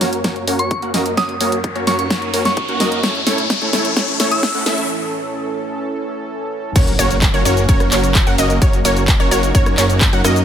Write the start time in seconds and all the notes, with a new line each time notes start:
Already playing: F#2 F#3 C#4 A#4, riser
0.01 A#3 C#4 F#4 A#4 C#5, snare, open hi-hat
0.13 closed hi-hat
0.24 A#3 C#4 F#4 A#4 C#5, kick, snare, closed hi-hat
0.36 closed hi-hat
0.48 A#3 C#4 F#4 A#4 C#5, open hi-hat
0.59 C#6, closed hi-hat
0.71 kick, closed hi-hat
0.82 A#3 C#4 F#4 A#4 F#5, closed hi-hat
0.94 A#3 C#4 F#4 A#4 D#5, snare, open hi-hat
1.06 closed hi-hat
1.17 A#3 C#4 D#4 F#4 A#4 C#5 D#6, kick, snare, closed hi-hat
1.29 closed hi-hat
1.41 A#3 C#4 F#4 A#4 C#5, open hi-hat
1.52 closed hi-hat
1.64 kick, closed hi-hat
1.76 A#3 C#4 F#4 A#4 C#5, closed hi-hat
1.87 A#3 C#4 F#4 A#4 C#5 C#6, snare, open hi-hat
1.99 C#6, closed hi-hat
2.10 A#3 C#4 F#4 A#4 C#5, kick, snare, closed hi-hat
2.22 closed hi-hat
2.34 A#3 C#4 F#4 A#4 C#5, open hi-hat
2.45 C#6, snare, closed hi-hat
2.57 kick, closed hi-hat
2.69 A#3 C#4 F#4 A#4 F#5, closed hi-hat
2.80 A#3 C#4 F#4 A#4 D#5, snare, open hi-hat
2.92 closed hi-hat
3.03 A2 E3 A3 C#4 E4 A4 C#5, kick, snare, closed hi-hat
3.15 closed hi-hat
3.27 A3 C#4 E4 A4 C#5, snare, open hi-hat
3.38 closed hi-hat
3.50 kick, snare, closed hi-hat
3.62 A3 C#4 E4 A4 C#5, closed hi-hat
3.73 A3 C#4 E4 A4 C#5, snare, open hi-hat
3.85 closed hi-hat
3.96 A3 C#4 E4 A4 C#5, kick, snare, closed hi-hat
4.08 closed hi-hat
4.20 A3 C#4 E4 A4 C#5, snare, open hi-hat
4.31 E6, closed hi-hat
4.43 kick, snare, closed hi-hat
4.55 A3 C#4 E4 A4 F#5, closed hi-hat
4.66 A3 C#4 E4 A4 E5, snare, open hi-hat
4.78 closed hi-hat
6.76 F#1 F#3 A#3 C#4 F#4 A#4 C#5, kick, closed hi-hat, crash, impact, shaker
6.87 closed hi-hat, shaker
6.99 F#1 A#3 C#4 F#4 A#4 C#5, open hi-hat, shaker
7.11 closed hi-hat, shaker
7.22 kick, clap, closed hi-hat, shaker
7.34 F#1 A#3 C#4 F#4 A#4 C#5, closed hi-hat, shaker
7.45 F#1 A#3 C#4 F#4 A#4 C#5, open hi-hat, shaker
7.57 closed hi-hat, shaker
7.69 F#1 A#3 C#4 F#4 A#4 C#5, kick, closed hi-hat, shaker
7.80 cross-stick, closed hi-hat, shaker
7.92 F#1 A#3 C#4 F#4 A#4 C#5, clap, open hi-hat, shaker
8.04 closed hi-hat, shaker
8.15 kick, clap, closed hi-hat, shaker
8.27 F#1 A#3 C#4 F#4 A#4 F#5, closed hi-hat, shaker
8.38 F#1 A#3 C#4 F#4 A#4 D#5, open hi-hat, shaker
8.50 closed hi-hat, shaker
8.62 F#1 A#3 C#4 D#4 F#4 A#4 C#5, kick, closed hi-hat, shaker
8.73 closed hi-hat, shaker
8.85 F#1 A#3 C#4 F#4 A#4 C#5, open hi-hat, shaker
8.97 closed hi-hat, shaker
9.08 kick, clap, closed hi-hat, shaker
9.20 F#1 A#3 C#4 F#4 A#4 C#5, closed hi-hat, shaker
9.31 F#1 A#3 C#4 F#4 A#4 C#5, open hi-hat, shaker
9.43 closed hi-hat, shaker
9.55 F#1 A#3 C#4 F#4 A#4 C#5, kick, closed hi-hat, shaker
9.66 cross-stick, closed hi-hat, shaker
9.78 F#1 A#3 C#4 F#4 A#4 C#5, clap, open hi-hat, shaker
9.90 closed hi-hat, shaker
10.01 kick, clap, closed hi-hat, shaker
10.13 F#2 A#3 C#4 F#4 A#4 F#5, closed hi-hat, shaker
10.24 F#2 A#3 C#4 F#4 A#4 D#5, cross-stick, open hi-hat, shaker
10.36 closed hi-hat, shaker